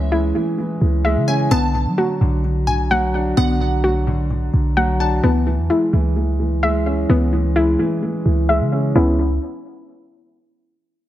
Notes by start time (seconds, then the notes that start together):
Already playing: C#2 E3 G#3 B3 C#4 E4 E5
0.12 G#3 E4
0.35 E3
0.58 E3
0.81 C#2 E3
1.05 G#3 E5
1.16 C#3
1.28 C#4 G#5
1.51 B1 D3 B3 A5
1.75 D3
1.86 F#3
1.98 F#3 F#4
2.21 B1 D3
2.44 D3
2.67 D3 G#5
2.91 F#3 F#5
3.14 D4
3.37 B1 D3 B3 F#5
3.61 D3
3.84 F#3 F#4
4.07 D3
4.30 D3
4.54 B1 D3
4.77 F#3 F#5
5.00 D4 A5
5.23 C#2 E3 B3
5.47 E3
5.58 E2
5.70 G#3 E4
5.93 C#2 E3
6.16 E3
6.40 E3
6.63 G#3 E5
6.86 C#4
7.09 C#2 E3 B3
7.33 E3
7.56 G#3 E4
7.79 E3
8.02 E3
8.26 C#2 E3
8.49 G#3 E5
8.61 C#3
8.72 C#4
8.95 C#2 E3 G#3 B3 C#4 E4